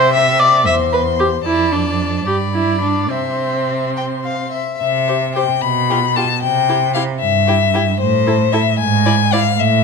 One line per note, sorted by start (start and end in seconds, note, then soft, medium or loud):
0.00 0.68 C3 medium
0.00 0.13 C5 medium
0.00 0.66 E5 medium
0.00 0.68 G5 medium
0.13 0.41 E5 medium
0.39 0.66 D5 medium
0.66 1.44 E2 soft
0.66 1.44 C5 soft
0.66 0.74 E5 medium
0.66 1.45 C6 medium
0.93 1.01 B4 medium
1.19 1.27 G4 medium
1.45 2.25 F2 soft
1.45 1.74 E4 medium
1.45 2.25 D5 soft
1.45 2.28 A5 medium
1.72 2.26 D4 medium
2.26 3.11 G2 soft
2.26 2.35 G4 medium
2.26 3.13 D5 soft
2.26 3.10 B5 soft
2.54 2.81 E4 medium
2.81 3.12 D4 medium
3.09 4.59 C3 soft
3.09 4.52 C4 medium
3.09 3.90 E5 soft
3.09 4.57 C6 soft
3.96 4.04 G5 soft
4.24 4.52 F5 soft
4.52 4.80 E5 soft
4.80 5.49 C3 medium
4.80 5.31 E5 medium
5.08 5.16 G4 soft
5.08 5.16 C5 soft
5.35 5.43 G4 soft
5.35 5.44 C5 soft
5.35 5.63 G5 medium
5.62 6.29 B2 medium
5.62 6.18 B5 medium
5.90 5.98 F4 soft
5.90 5.98 G4 medium
6.16 6.25 F4 soft
6.16 6.24 G4 soft
6.16 6.42 A5 medium
6.42 7.09 C3 medium
6.42 6.94 G5 medium
6.69 6.77 E4 soft
6.69 6.77 G4 soft
6.94 7.03 E4 medium
6.94 7.03 G4 medium
6.94 7.02 F5 medium
7.20 7.88 G2 medium
7.20 7.99 E5 medium
7.47 7.56 E4 soft
7.47 7.55 G4 medium
7.74 7.82 E4 medium
7.74 7.82 G4 medium
8.00 8.67 A2 medium
8.00 8.53 C5 medium
8.27 8.35 E4 medium
8.27 8.35 A4 soft
8.52 8.61 E4 medium
8.52 8.61 A4 medium
8.52 8.78 E5 medium
8.79 9.46 G#2 medium
8.79 9.34 G#5 medium
9.06 9.14 E4 medium
9.06 9.14 D5 medium
9.33 9.41 E4 medium
9.33 9.41 D5 medium
9.33 9.61 F5 medium
9.59 9.84 A2 medium
9.59 9.84 E5 medium